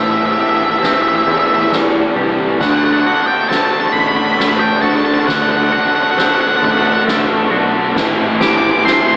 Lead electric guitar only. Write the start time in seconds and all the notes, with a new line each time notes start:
0.03 E5
0.11 E5
0.18 E5
0.26 E5
0.32 E5
0.40 E5
0.49 E5
0.57 E5
0.64 E5
0.71 E5
0.79 E5
0.86 E5
0.94 E5
1.02 E5
1.08 E5
1.16 E5
1.23 E5
1.31 E5
1.39 E5
1.47 E5
1.54 E5
1.62 E5
2.61 F#5
2.70 F#5
2.76 F#5
2.85 F#5
2.92 F#5
3.00 F#5
3.06 F#5
3.14 F#5
3.22 F#5
3.27 G5
3.49 A5
3.57 A5
3.65 A5
3.73 A5
3.80 A5
3.87 A5
3.93 B5
4.00 B5
4.08 B5
4.17 B5
4.26 B5
4.33 B5
4.41 B5
4.49 B5
4.60 G5
4.82 A5
4.89 A5
4.96 A5
5.05 A5
5.14 A5
5.20 A5
5.27 F#5
5.35 F#5
5.42 F#5
5.51 F#5
5.57 F#5
5.64 F#5
5.73 F#5
5.81 F#5
5.87 F#5
5.95 F#5
6.03 F#5
6.11 F#5
6.19 F#5
6.26 F#5
6.35 F#5
6.41 F#5
6.48 F#5
6.56 F#5
6.64 F#5
6.71 F#5
6.79 F#5
6.87 F#5
6.94 F#5
8.41 D6
8.48 D6
8.58 D6
8.64 D6
8.71 D6
8.79 D6
8.85 C6
8.93 C6
9.01 C6
9.08 C6